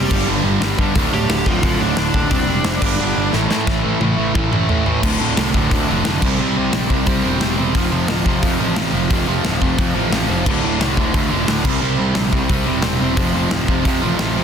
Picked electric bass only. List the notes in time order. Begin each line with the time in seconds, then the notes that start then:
0.11 G1
0.27 G1
0.44 G1
0.61 G1
0.79 G2
0.95 D1
1.12 D1
1.28 D1
1.46 D1
1.63 D1
1.80 D1
1.96 D1
2.14 D#1
2.31 E1
2.47 E1
2.65 F1
2.82 G1
2.99 G1
3.16 G1
3.34 A1
3.51 A2
3.68 A1
3.84 A1
4.01 A1
4.18 A1
4.35 A1
4.53 A1
4.70 A1
4.86 A1
5.03 D1
5.20 D1
5.38 C2
5.54 D1
5.71 D2
5.89 F1
6.06 F1
6.22 C2
6.40 C2
6.57 C2
6.73 A#1
6.90 C2
7.07 C2
7.26 E1
7.42 E1
7.58 E1
7.75 F1
7.92 F1
8.09 D1
8.26 F1
8.42 F2
8.59 A1
8.76 A1
8.93 F1
9.11 F1
9.28 F1
9.44 D1
9.61 F1
9.78 F2
9.96 A1
10.12 A1
10.29 F1
10.46 D1
10.63 D1
10.79 C2
10.97 D1
11.14 D2
11.31 F1
11.48 D1
11.65 C2
11.82 C2
11.99 C2
12.15 A#1
12.32 C2
12.49 C2
12.67 E1
12.83 E1
13.00 E1
13.17 F1
13.34 F1
13.51 D1
13.68 F1
13.85 F2
14.03 A1
14.19 A1
14.36 F1